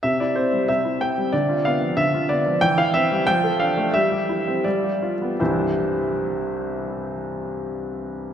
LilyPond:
<<
  \new Staff \with { instrumentName = "Grand piano" } { \time 2/4 \key c \major \tempo 4 = 88 e''16 d''16 c''8 e''8 g''8 | d''8 f''8 e''8 d''8 | g''16 f''16 e''8 g''8 f''8 | e''4 d''4 |
<c, g, e g c' e' c''>2~ | <c, g, e g c' e' c''>2 | }
  \new Staff \with { instrumentName = "Grand piano" } { \time 2/4 \key c \major c16 e'16 c'16 g16 c16 e'16 c'16 g16 | d16 f'16 b16 f16 d16 f'16 b16 f16 | e16 e'16 c'16 g16 f16 a'16 d'16 a16 | g16 g'16 e'16 c'16 g16 g'16 f'16 b16 |
r2 | r2 | }
>>